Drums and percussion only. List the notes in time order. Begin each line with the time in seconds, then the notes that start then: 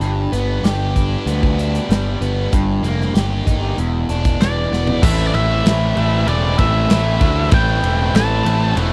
0.01 closed hi-hat
0.33 closed hi-hat
0.64 snare, closed hi-hat
0.96 kick, closed hi-hat
1.27 closed hi-hat
1.43 kick
1.59 closed hi-hat
1.75 closed hi-hat
1.90 snare, closed hi-hat
2.22 closed hi-hat
2.53 kick, closed hi-hat
2.84 closed hi-hat
3.01 snare
3.15 snare, closed hi-hat
3.47 kick, closed hi-hat
3.78 closed hi-hat
4.09 closed hi-hat
4.25 kick, closed hi-hat
4.41 snare, closed hi-hat
4.73 snare
4.87 floor tom
5.03 kick, crash
5.34 ride
5.66 snare, ride
5.97 ride
6.28 ride
6.58 kick, ride
6.90 snare, ride
7.21 kick, ride
7.51 kick, ride
7.84 ride
8.15 snare, ride
8.46 ride
8.77 ride